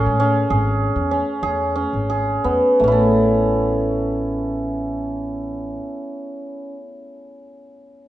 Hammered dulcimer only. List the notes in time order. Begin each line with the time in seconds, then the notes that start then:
Already playing: C#4 G#4
0.20 C#4
0.50 G#4
1.11 C#4
1.43 G#4
1.76 C#4
2.10 G#4
2.44 B3
2.80 A3
2.84 C#4 E4
2.92 A4